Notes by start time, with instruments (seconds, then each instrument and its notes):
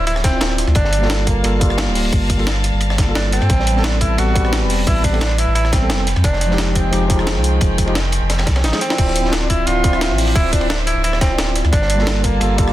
Already playing: string section F3 D4 C5 E5
0.00 sub bass D1
0.07 tenor saxophone E4, closed hi-hat, ride
0.16 cross-stick, snare
0.24 tenor saxophone C4, kick, snare, closed hi-hat, ride
0.30 tine electric piano C4 E4
0.34 tine electric piano F4 D5
0.41 sub bass D1, snare, closed hi-hat, ride
0.50 cross-stick
0.58 snare, closed hi-hat, ride
0.67 sub bass D2, cross-stick, ride
0.75 sub bass G1, string section G3 A#3 F5 A5, tenor saxophone D4, kick, closed hi-hat, ride
0.85 snare
0.93 closed hi-hat, ride
0.98 tine electric piano G3 A#3
1.02 tine electric piano F4 A4, snare
1.10 snare, closed hi-hat, ride
1.19 ride
1.27 tenor saxophone A#3, kick, closed hi-hat, ride
1.42 sub bass G1, tine electric piano G3 A#3 F4 A4, closed hi-hat, ride
1.59 tine electric piano G3 A#3 F4 A4, kick, closed hi-hat, ride
1.67 tine electric piano G3 A#3, cross-stick
1.71 tine electric piano F4 A#4
1.78 snare, closed hi-hat, ride
1.87 sub bass D1, snare
1.95 snare, closed hi-hat, open hi-hat
2.05 ride
2.12 sub bass G1, kick, closed hi-hat, ride
2.30 kick, closed hi-hat, ride
2.37 tine electric piano G3 A#3 F4 A4, ride
2.47 snare, closed hi-hat, ride
2.56 ride
2.64 cross-stick, closed hi-hat, ride
2.73 sub bass G1
2.81 closed hi-hat, ride
2.90 cross-stick, snare
2.98 kick, snare, closed hi-hat, ride
3.04 tine electric piano G3 A#3
3.08 tine electric piano F4 A4
3.15 sub bass G1, tenor saxophone D4, snare, closed hi-hat, ride
3.25 cross-stick
3.32 tenor saxophone C4, snare, closed hi-hat, ride
3.42 sub bass G2, cross-stick, ride
3.50 sub bass A1, string section B4, kick, closed hi-hat, ride
3.60 snare
3.67 closed hi-hat, ride
3.72 tine electric piano G3 B3
3.77 tine electric piano C4 A4, snare
3.84 tenor saxophone D4, snare, closed hi-hat, ride
3.92 ride
4.01 tenor saxophone E4, kick, closed hi-hat, ride
4.17 sub bass A1, tine electric piano G3 B3 C4 A4, tenor saxophone F#4, closed hi-hat, ride
4.34 tine electric piano G3 B3 C4 A4, kick, closed hi-hat, ride
4.41 tine electric piano G3 B3, cross-stick
4.46 tine electric piano C4 B4
4.53 snare, closed hi-hat, ride
4.62 sub bass E1, snare
4.70 snare, closed hi-hat, open hi-hat
4.79 ride
4.87 sub bass A1, tenor saxophone E4, kick, closed hi-hat, ride
5.04 tenor saxophone D4, kick, closed hi-hat, ride
5.11 tine electric piano G3 B3 C4 A4, ride
5.21 tenor saxophone D4, snare, closed hi-hat, ride
5.31 ride
5.38 tenor saxophone E4, cross-stick, closed hi-hat, ride
5.47 sub bass A1
5.55 tenor saxophone E4, closed hi-hat, ride
5.65 cross-stick, snare
5.73 tenor saxophone C4, kick, snare, closed hi-hat, ride
5.80 tine electric piano G3 B3 C4 A4
5.89 sub bass F1, snare, closed hi-hat, ride
5.99 cross-stick
6.07 string section D#3 F3 G#3 G5, snare, closed hi-hat, ride
6.16 sub bass F2, cross-stick, ride
6.24 sub bass F1, tenor saxophone D4, kick, closed hi-hat, ride
6.33 snare
6.41 closed hi-hat, ride
6.47 tine electric piano F3 G#3
6.51 tine electric piano D#4 G4, snare
6.58 snare, closed hi-hat, ride
6.67 ride
6.75 tenor saxophone C4, kick, cross-stick, closed hi-hat, ride
6.91 sub bass F1, tine electric piano F3 G#3 D#4 G4, closed hi-hat, ride
7.08 tine electric piano F3 G#3 D#4 G4, kick, closed hi-hat, ride
7.15 tine electric piano F3 G#3, cross-stick
7.20 tine electric piano D#4 G#4
7.27 snare, closed hi-hat, ride
7.36 sub bass C2, snare
7.44 closed hi-hat
7.61 sub bass F1, kick, closed hi-hat, ride
7.78 kick, closed hi-hat, ride
7.86 tine electric piano F3 G#3 D#4 G4, ride
7.95 snare, closed hi-hat, ride
8.05 ride
8.12 closed hi-hat, ride
8.22 sub bass F1
8.30 snare, closed hi-hat, ride
8.39 cross-stick, snare, ride
8.46 sub bass C2, kick, snare, closed hi-hat, ride
8.56 snare, ride
8.64 sub bass G#1, tenor saxophone D#4, snare, closed hi-hat, ride
8.71 tine electric piano F3 G#3 D#4 G#4, snare, ride
8.81 tenor saxophone C4, snare, closed hi-hat, ride
8.89 tine electric piano C4 E4 F4 D5, snare, ride
8.98 sub bass D1, string section D4 C5 E5, kick, closed hi-hat, crash, ride
9.07 snare
9.16 closed hi-hat, ride
9.21 tine electric piano C4 E4, snare
9.26 tine electric piano F4 D5
9.32 tenor saxophone D4, snare, closed hi-hat, ride
9.42 ride
9.50 tenor saxophone E4, kick, closed hi-hat, ride
9.65 sub bass D1, tine electric piano C4 E4 F4 D5, tenor saxophone F4, closed hi-hat, ride
9.83 tine electric piano C4 E4 F4 D5, kick, closed hi-hat, ride
9.90 tine electric piano C4 E4, cross-stick
9.95 tine electric piano F4 E5
10.01 snare, closed hi-hat, ride
10.10 sub bass A1, snare
10.18 snare, closed hi-hat, open hi-hat
10.27 ride
10.35 sub bass D1, tenor saxophone E4, kick, closed hi-hat, ride
10.52 tenor saxophone D4, kick, closed hi-hat, ride
10.60 tine electric piano C4 E4 F4 D5, ride
10.69 tenor saxophone D4, snare, closed hi-hat, ride
10.79 ride
10.86 tenor saxophone E4, cross-stick, closed hi-hat, ride
10.96 sub bass D1
11.04 tenor saxophone E4, closed hi-hat, ride
11.13 cross-stick, snare
11.21 tenor saxophone C4, kick, snare, closed hi-hat, ride
11.27 tine electric piano C4 E4
11.32 tine electric piano F4 D5
11.38 sub bass D1, snare, closed hi-hat, ride
11.48 cross-stick
11.56 snare, closed hi-hat, ride
11.65 sub bass D2, cross-stick, ride
11.72 sub bass G1, string section G3 A#3 F4 A5, tenor saxophone D4, kick, closed hi-hat, ride
11.82 snare
11.90 closed hi-hat, ride
11.95 tine electric piano G3 A#3, snare
12.00 tine electric piano F4 A4
12.07 snare, closed hi-hat, ride
12.16 ride
12.24 tenor saxophone A#3, kick, closed hi-hat, ride
12.40 sub bass G1, tine electric piano G3 A#3 F4 A4, closed hi-hat, ride
12.57 tine electric piano G3 A#3 F4 A4, kick, closed hi-hat, ride
12.64 tine electric piano G3 A#3, cross-stick
12.69 tine electric piano F4